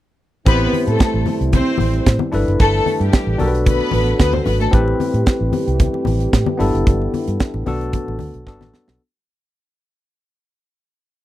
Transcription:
0.46 A1 C3 E3 G3 A3 B3 C4 E4 G4 B4 C5, kick, closed hi-hat, muted conga
0.61 muted conga
0.73 open hi-hat, high conga
0.87 A2 A3 A4, closed hi-hat
0.99 kick, snare, closed hi-hat, muted conga
1.14 A1
1.26 open hi-hat, high conga, low conga
1.41 C2, closed hi-hat
1.53 C4 C5, kick, closed hi-hat, high conga
1.78 A1, open hi-hat, high conga
1.94 closed hi-hat
2.06 A2, kick, snare, closed hi-hat
2.19 muted conga, high conga
2.32 G1 D3 B3 D4 E4 A4 B4, open hi-hat, low conga
2.48 F#1, closed hi-hat
2.60 G1 A3 A4, kick, closed hi-hat, muted conga
2.74 muted conga
2.86 open hi-hat, high conga
3.00 G2 G3 G4, closed hi-hat
3.13 kick, snare, closed hi-hat
3.27 A1
3.38 B1 F#3 A3 B3 D4 F#4 A4 A#4, open hi-hat, high conga, low conga
3.48 B4
3.55 closed hi-hat
3.66 B3 B4, kick, closed hi-hat, high conga
3.81 muted conga
3.91 A1, open hi-hat, high conga
4.07 closed hi-hat
4.19 D2 B3 B4, kick, snare, closed hi-hat, muted conga
4.33 C4 C5, high conga
4.46 G#1 B3 B4, open hi-hat, low conga
4.60 A3 A4, closed hi-hat
4.71 A1 E3 G3 A3 C4 E4 G4 B4, kick, closed hi-hat, muted conga
4.88 muted conga
5.00 open hi-hat, high conga
5.14 A2, closed hi-hat
5.26 kick, snare, closed hi-hat
5.41 A1
5.53 open hi-hat, high conga, low conga
5.67 C2, closed hi-hat
5.80 kick, closed hi-hat, high conga
5.94 muted conga
6.05 A1, open hi-hat, high conga
6.20 closed hi-hat
6.33 A2, kick, snare, closed hi-hat
6.46 high conga
6.57 G1 E3 B3 D4 E4 A4, open hi-hat, low conga
6.75 F#1, closed hi-hat
6.87 G1, kick, closed hi-hat, muted conga, low conga
7.02 muted conga
7.14 open hi-hat, high conga
7.27 G2, closed hi-hat
7.40 kick, snare, closed hi-hat
7.54 A1, muted conga
7.66 B1 D3 F#3 A3 B3 D4 F#4 A4, open hi-hat, high conga, low conga
7.81 closed hi-hat
7.93 kick, closed hi-hat, high conga
8.08 A1, muted conga
8.19 D2, open hi-hat, high conga
8.34 B1, closed hi-hat
8.47 G1 F#3 G3 B3 D4 F#4 A4, kick, snare
8.61 A1, snare, muted conga, high conga
8.74 snare, low conga
8.88 B1, snare

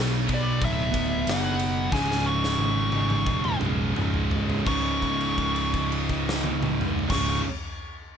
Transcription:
Already playing: B1 B2 F#3 B3
0.00 snare
0.26 B2 F#3 B3, kick, ride
0.34 D5
0.60 D1 B2 F#3 B3, kick, ride
0.65 E5
0.92 D1 F#3 B3, kick, ride
0.96 B2
1.24 F#1 B2 F#3 B3, ride
1.28 F#5, snare
1.59 ride
1.90 C#1 C#2 G#2 C#3 G#5, kick
1.95 snare
2.11 snare
2.26 C#6
2.44 snare
2.58 G#1, high tom
2.91 C#2 G#2 C#3, high tom
3.10 mid tom
3.25 E1 C#2 G#2 C#3, kick
3.44 mid tom
3.60 B1 C#2 G#2 C#3, mid tom
3.94 C#1 C#2 G#2 C#3, mid tom
4.14 floor tom
4.31 floor tom
4.50 floor tom
4.65 C#1 C#2 G#2 C#3 C#6, kick, crash
5.02 kick, crash
5.21 crash
5.38 kick, crash
5.56 crash
5.74 kick, crash
5.92 crash
6.09 kick, crash
6.29 snare
6.44 high tom
6.62 mid tom
6.81 mid tom
6.99 floor tom
7.08 C#1 C#2 G#2 C#3 C#6, kick, crash
7.12 snare

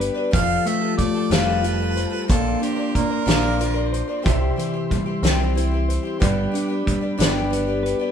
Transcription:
Already playing: G3 B3 D4 G4 B4 D5 B5
0.00 B4, closed hi-hat
0.14 G3 B3 D4 B4
0.31 F1 F3 G3 C4 F4 A4 F5 A5, kick, closed hi-hat
0.64 G3 A3 C4 F4 A4 E5, closed hi-hat
0.81 C4 F4 A4
0.98 A3 D5, kick, closed hi-hat
1.14 C4 F4 A4
1.30 F1 F3 G3 C4 F4 A4 B4, snare, closed hi-hat
1.62 G3 C4 F4 A4, closed hi-hat
1.80 C4 F4 A4
1.97 C5, closed hi-hat
2.11 C4 F4 A4
2.28 A#1 A#2 D3 F3 A#3 C4 D4 A4 D5 C6, kick, closed hi-hat
2.60 F3 C4 D4 G4, closed hi-hat
2.64 A#4
2.76 F3 C4 D4 A#4
2.95 A#3 A#4, kick, closed hi-hat
3.09 F3 C4 D4 A#4
3.26 A#1 A#2 D3 F3 C4 D4 A#4, snare, closed hi-hat
3.58 F3 C4 D4 F4 A#4, closed hi-hat
3.74 F3 C4 D4 A#4
3.92 C5, closed hi-hat
4.08 F3 C4 D4 A#4
4.22 C2 C3 G3 C4 E4 G4 C5 E5, kick, closed hi-hat
4.27 E5
4.56 E3 G3 C4 E4 G4, closed hi-hat
4.73 C4 E4 G4
4.90 G3, kick, closed hi-hat
5.06 C4 E4 G4
5.23 C2 C3 G3 C4 E4 G4, snare, closed hi-hat
5.55 G3 C4 E4 G4, closed hi-hat
5.71 C4 E4 G4
5.89 C5, closed hi-hat
6.03 C4 E4 G4
6.20 G1 G2 D3 G3 B3 D4 G4 B4 D5 B5, kick, closed hi-hat
6.52 G3 B3 D4, closed hi-hat
6.56 G4
6.68 G3 B3 D4 G4
6.86 G3, kick, closed hi-hat
7.01 G3 B3 D4 G4
7.18 G1 G2 D3 G3 B3 D4 G4, snare, closed hi-hat
7.50 G3 B3 D4 G4, closed hi-hat
7.67 G3 B3 D4 G4
7.83 B4, closed hi-hat
7.99 G3 B3 D4 G4

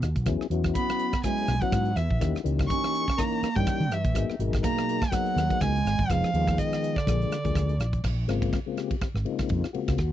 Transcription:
0.02 D#2 D#4 F#4, cross-stick, closed hi-hat
0.15 B1, kick, closed hi-hat
0.26 E2 F#3 B3 C#4 E4 G#4, kick, cross-stick, closed hi-hat
0.40 muted fretless electric bass stroke, cross-stick
0.50 E2 F#3 B3 C#4 E4 F#4, closed hi-hat
0.64 kick, cross-stick, closed hi-hat
0.75 B3 B5, kick, closed hi-hat
0.89 cross-stick, closed hi-hat
0.99 closed hi-hat
1.13 kick, cross-stick, closed hi-hat
1.24 F#3 G#3 B3 C#4 E4 G#4 G#5, kick, cross-stick, closed hi-hat
1.38 closed hi-hat
1.48 B1, cross-stick, closed hi-hat
1.61 F#3 B3 C#4 E4 F#4 F#5, kick, closed hi-hat
1.72 G#2, kick, cross-stick, closed hi-hat
1.85 closed hi-hat
1.95 E2 E3 E4 F#4 E5, cross-stick, closed hi-hat
2.10 A#1, kick
2.20 D#2 E3 A#3 C#4 D#4 G4, kick, cross-stick, closed hi-hat
2.35 cross-stick, closed hi-hat
2.44 C#2 E3 A#3 C#4 D#4 G4, closed hi-hat
2.59 kick, cross-stick, closed hi-hat
2.68 C#4 C#6, kick, closed hi-hat
2.84 cross-stick, closed hi-hat
2.95 closed hi-hat
3.08 kick, cross-stick
3.17 E3 A#3 C#4 D#4 A#4 A#5, kick, cross-stick, closed hi-hat
3.32 closed hi-hat
3.43 muted fretless electric bass stroke, cross-stick, closed hi-hat
3.56 G2 E3 G3 A#3 C#4 D#4 G4 G5, kick, closed hi-hat
3.67 kick, cross-stick, closed hi-hat
3.80 D#3, closed hi-hat
3.91 G2 E3 D#4 G4 E5, cross-stick, closed hi-hat
4.04 A#1, kick, closed hi-hat
4.14 G#1 F#3 A#3 B3 D#4 G#4, kick, cross-stick, closed hi-hat
4.30 cross-stick
4.39 G#1 B2 F#3 D#4 G#4 A#4, closed hi-hat
4.53 kick, cross-stick, closed hi-hat
4.63 A#3 A#5, kick, closed hi-hat
4.78 cross-stick, closed hi-hat
4.89 closed hi-hat
5.02 kick, cross-stick, closed hi-hat
5.11 F#3 A#3 B3 D#4 G#4 F#5, kick, cross-stick, closed hi-hat
5.26 closed hi-hat
5.36 D#2, cross-stick, closed hi-hat
5.49 F#3 A#3 B3 D#4 G#4, kick, closed hi-hat
5.61 C#2 G#3 G#5, kick, cross-stick, closed hi-hat
5.76 closed hi-hat
5.85 G#1 D#4 G#4, cross-stick, closed hi-hat
5.99 G#1, kick
6.10 F1 F3 G#3 B3 D#4 G#4 F5, kick, cross-stick, closed hi-hat
6.24 cross-stick, closed hi-hat
6.34 D#2 F3 G#3 B3 D#4 G#4, closed hi-hat
6.47 kick, cross-stick, closed hi-hat
6.58 D#3 D#5, kick, closed hi-hat
6.72 cross-stick, closed hi-hat
6.84 closed hi-hat
6.96 D3 D5, kick, cross-stick
7.06 A#1 F3 G#3 A#3 D4 G#4, kick, cross-stick, closed hi-hat
7.22 closed hi-hat
7.30 muted fretless electric bass stroke, cross-stick, closed hi-hat
7.44 D2 F3 G#3 A#3 D4 G#4, kick, closed hi-hat
7.55 D2, kick, cross-stick, closed hi-hat
7.69 closed hi-hat
7.78 A#1 D4 F4, cross-stick, closed hi-hat
7.93 kick, closed hi-hat
8.04 A#1, kick, cross-stick, crash
8.27 G#1 C#3 G#3 A#3 C4 F4, cross-stick, ride
8.42 kick, ride
8.53 kick, cross-stick, ride
8.66 C#3 G#3 A#3 C4 F4
8.77 G4, cross-stick, ride
8.91 kick, ride
9.01 C4 G4, kick, cross-stick, ride
9.14 G#1, cross-stick
9.25 C#3 G#3 A#3 C4 D#4 F4, ride
9.39 muted fretless electric bass stroke, kick, cross-stick, ride
9.49 F2, kick, ride
9.64 cross-stick
9.73 C#3 G#3 A#3 C4 F4 F#4, muted fretless electric bass stroke, ride
9.88 C#2, kick, cross-stick, ride
9.98 D#2, kick, cross-stick, ride

